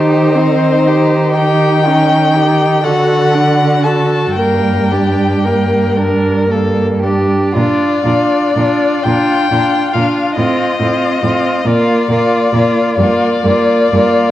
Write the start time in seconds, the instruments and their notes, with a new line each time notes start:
Already playing: cello D#3, viola D#4, violin G4 C5
0.35 viola C4, violin D#4
0.87 viola D#4, violin G4
1.37 viola D#4, violin G4 G5
1.86 viola C#4, violin D#4
2.36 viola D#4, violin G4
2.84 cello D3, viola F#4, violin A4 F#5
3.34 viola D4, violin F#4
3.84 viola F#4, violin A4 A5
4.36 cello G2, viola A#3, violin A#4 G5
4.91 viola D4, violin G4
5.44 viola A#3, violin A#4
5.98 viola D4, violin A#4
6.49 viola A#3, violin A4
7.02 viola D4, violin G4
7.54 cello A#2, viola D4, violin F4 D5
8.05 cello A#2, viola D4, violin F4
8.56 cello A#2, viola D4, violin F4
9.03 cello A#2, viola D4, violin F4 G5
9.51 cello A#2, viola D4, violin F4
9.93 cello A#2, viola D4, violin F4 F5
10.36 cello A2, viola C4, violin F4 D#5
10.80 cello A2, viola C4, violin F4
11.23 cello A2, viola C4, violin F4
11.66 cello A#2, viola A#3, violin F4 D5
12.09 cello A#2, viola A#3, violin F4
12.53 cello A#2, viola A#3, violin F4
12.96 cello G2, viola A#3, violin D5
13.02 violin F4
13.44 cello G2, viola A#3, violin F4
13.93 cello G2, viola A#3, violin F4